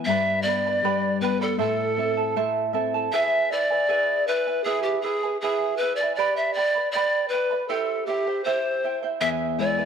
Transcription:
0.05 1.55 G2 medium
0.05 0.46 G4 medium
0.05 0.44 E5 loud
0.05 0.45 G5 medium
0.09 0.46 B4 medium
0.09 0.46 D5 medium
0.09 0.46 B5 medium
0.42 0.81 B3 medium
0.42 1.20 D5 loud
0.42 0.64 G5 medium
0.47 0.65 B4 medium
0.47 0.65 D5 medium
0.47 0.65 B5 medium
0.66 0.83 B4 soft
0.66 0.84 D5 soft
0.66 0.84 B5 medium
0.82 1.20 G3 medium
0.82 1.22 G4 medium
0.82 1.22 B4 medium
0.82 1.22 D5 medium
0.82 1.21 G5 medium
0.82 1.22 B5 medium
1.21 1.58 B3 medium
1.21 1.43 B4 medium
1.21 1.41 B4 medium
1.21 1.41 D5 medium
1.21 1.41 G5 medium
1.21 1.40 B5 medium
1.41 1.59 A4 medium
1.41 1.59 B4 soft
1.41 1.59 D5 soft
1.41 1.60 B5 medium
1.58 3.07 A2 medium
1.58 1.97 E4 medium
1.58 1.97 A4 medium
1.58 2.70 A4 medium
1.58 1.97 C5 medium
1.58 1.97 E5 medium
1.58 1.98 A5 medium
1.97 2.35 C4 medium
1.97 2.17 E4 medium
1.97 2.17 A4 medium
1.97 2.17 E5 medium
1.97 2.16 A5 medium
2.17 2.35 E4 soft
2.17 2.36 A4 soft
2.17 2.36 A5 soft
2.36 2.73 A3 medium
2.36 2.73 E4 medium
2.36 2.73 A4 medium
2.36 2.74 C5 medium
2.36 2.72 E5 medium
2.36 2.73 A5 medium
2.73 3.11 C4 medium
2.73 2.93 E4 medium
2.73 2.93 A4 medium
2.73 2.93 E5 medium
2.73 2.93 A5 medium
2.94 3.12 E4 soft
2.94 3.13 A4 soft
2.94 3.13 A5 medium
3.12 3.51 E4 medium
3.12 3.51 G#4 medium
3.12 3.51 B4 medium
3.12 3.53 E5 loud
3.12 3.50 E5 medium
3.12 3.51 G#5 medium
3.51 3.71 E4 medium
3.51 3.70 B4 medium
3.51 4.27 D5 loud
3.51 3.70 E5 medium
3.51 3.69 G#5 medium
3.70 3.88 E4 soft
3.70 3.89 B4 soft
3.70 3.88 G#5 soft
3.89 4.27 E4 medium
3.89 4.27 G#4 medium
3.89 4.27 B4 medium
3.89 4.26 E5 medium
3.89 4.27 G#5 medium
4.28 4.47 E4 medium
4.28 4.66 B4 medium
4.28 4.47 B4 medium
4.28 4.46 E5 medium
4.28 4.46 G#5 medium
4.47 4.65 E4 soft
4.47 4.65 B4 soft
4.47 4.66 G#5 medium
4.64 5.03 E4 medium
4.64 4.84 G#4 medium
4.64 5.03 G#4 medium
4.64 5.04 B4 medium
4.64 5.03 E5 medium
4.64 5.04 G#5 medium
4.83 5.01 G4 medium
5.01 5.23 E4 medium
5.01 5.37 G#4 loud
5.01 5.22 E5 medium
5.05 5.23 B4 medium
5.05 5.22 G#5 medium
5.23 5.42 E4 soft
5.23 5.42 B4 medium
5.23 5.42 G#5 medium
5.41 5.81 E4 medium
5.41 5.79 G#4 medium
5.41 5.80 G#4 medium
5.41 5.80 B4 medium
5.41 5.80 E5 medium
5.41 5.81 G#5 medium
5.77 5.95 B4 loud
5.77 5.99 E5 medium
5.82 6.00 E4 medium
5.82 6.00 B4 medium
5.82 5.99 G#5 medium
5.96 6.14 D5 medium
6.01 6.18 E4 soft
6.01 6.18 B4 soft
6.01 6.18 G#5 medium
6.15 6.56 G4 medium
6.15 6.56 B4 medium
6.15 6.38 D5 loud
6.15 6.56 D5 medium
6.15 6.56 G5 medium
6.19 6.56 B5 medium
6.36 6.55 E5 medium
6.53 6.91 D5 loud
6.53 6.75 G5 medium
6.57 6.75 B4 medium
6.57 6.75 D5 medium
6.57 6.74 B5 medium
6.76 6.95 B4 soft
6.76 6.94 D5 soft
6.76 6.94 B5 soft
6.92 7.32 G4 medium
6.92 7.30 D5 loud
6.96 7.33 B4 medium
6.96 7.33 D5 medium
6.96 7.32 G5 medium
6.96 7.33 B5 medium
7.28 7.68 B4 medium
7.33 7.52 B4 medium
7.33 7.51 D5 medium
7.33 7.51 G5 medium
7.33 7.50 B5 medium
7.51 7.69 B4 soft
7.51 7.70 D5 soft
7.51 7.70 B5 medium
7.68 8.07 E4 medium
7.68 8.07 G4 medium
7.68 8.08 A4 medium
7.68 8.08 C5 medium
7.68 8.06 E5 medium
7.68 8.08 G5 medium
8.06 8.27 E4 medium
8.06 8.44 G4 medium
8.06 8.26 C5 medium
8.06 8.26 E5 medium
8.06 8.26 G5 medium
8.27 8.45 E4 soft
8.27 8.46 C5 soft
8.27 8.45 G5 soft
8.44 8.83 E4 medium
8.44 8.84 G4 medium
8.44 8.98 C5 medium
8.44 8.83 C5 medium
8.44 8.83 E5 medium
8.44 8.84 G5 medium
8.84 9.03 E4 medium
8.84 9.02 C5 medium
8.84 9.02 E5 medium
8.84 9.02 G5 medium
9.03 9.20 E4 soft
9.03 9.21 C5 soft
9.03 9.21 G5 medium
9.21 9.85 E2 medium
9.21 9.59 E4 medium
9.21 9.59 G#4 medium
9.21 9.59 B4 medium
9.21 9.58 E5 medium
9.21 9.29 E5 loud
9.21 9.59 G#5 medium
9.58 9.85 G#3 soft
9.58 9.85 B3 soft
9.58 9.85 E4 medium
9.58 9.78 E4 medium
9.58 9.77 B4 medium
9.58 9.85 D5 loud
9.58 9.78 E5 soft
9.58 9.77 G#5 medium
9.78 9.85 E4 soft
9.78 9.85 B4 soft
9.78 9.85 G#5 medium

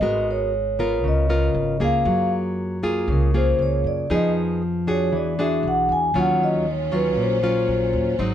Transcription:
0.00 1.04 G#1 medium
0.00 1.01 G#3 medium
0.00 0.52 B3 soft
0.00 0.53 F#4 medium
0.00 0.53 A#4 medium
0.00 0.25 D#5 medium
0.31 1.02 C#5 medium
0.79 1.26 B3 medium
0.79 1.26 F4 medium
0.79 1.26 A#4 medium
1.03 1.51 C#2 medium
1.03 2.03 C#3 medium
1.08 1.78 D#5 medium
1.29 1.76 B3 medium
1.29 1.77 F4 medium
1.29 1.77 A#4 medium
1.54 1.78 G#1 medium
1.80 2.04 C#2 medium
1.80 2.78 A#3 medium
1.80 2.79 F4 medium
1.80 2.79 G#4 medium
1.80 2.30 F5 medium
2.05 3.09 F#2 medium
2.05 3.06 F#3 medium
2.83 3.30 A#3 medium
2.83 3.30 F4 medium
2.83 3.30 G#4 medium
3.08 3.55 C#2 medium
3.08 4.08 C#3 medium
3.12 3.35 A#4 medium
3.34 4.06 A#3 medium
3.34 4.06 F4 medium
3.34 4.07 G#4 medium
3.34 3.60 C5 medium
3.59 3.83 C#2 medium
3.59 3.85 C#5 medium
3.84 4.08 F#2 medium
3.84 4.11 D5 medium
4.10 5.12 F2 loud
4.10 5.10 F3 medium
4.10 4.61 B3 medium
4.10 4.61 D#4 medium
4.10 4.61 G#4 medium
4.14 4.28 D#5 medium
4.87 5.34 D4 medium
4.87 5.34 F#4 medium
4.87 5.34 G#4 medium
4.87 5.13 C#5 medium
5.12 5.60 E2 medium
5.12 6.12 E3 medium
5.17 5.39 D5 medium
5.39 6.11 D4 medium
5.39 6.11 F#4 medium
5.39 6.11 G#4 medium
5.39 5.64 E5 medium
5.63 5.87 B1 medium
5.68 5.90 F#5 medium
5.89 6.12 E2 medium
5.89 6.15 G#5 medium
6.14 7.17 D#2 medium
6.14 7.14 D#3 soft
6.14 8.17 F#3 medium
6.14 6.65 F#3 medium
6.14 8.17 C#4 medium
6.14 6.66 C#4 soft
6.14 6.66 F4 medium
6.14 8.17 F4 medium
6.18 6.41 F#5 medium
6.43 6.66 D#5 medium
6.71 6.93 C#5 medium
6.92 7.38 F#3 medium
6.92 7.38 C#4 medium
6.92 7.39 F4 medium
6.92 7.18 B4 medium
7.17 7.64 A#1 medium
7.17 8.17 A#2 medium
7.21 8.17 C5 medium
7.43 8.15 F#3 medium
7.43 8.15 C#4 medium
7.43 8.15 F4 medium
7.68 7.91 A#1 medium
7.93 8.17 D#2 medium
8.18 8.34 G#1 loud
8.18 8.34 G#2 medium
8.18 8.34 F#3 medium
8.18 8.34 G#3 medium
8.18 8.34 C4 medium
8.18 8.34 D#4 medium
8.18 8.34 F#4 medium
8.18 8.34 C5 medium

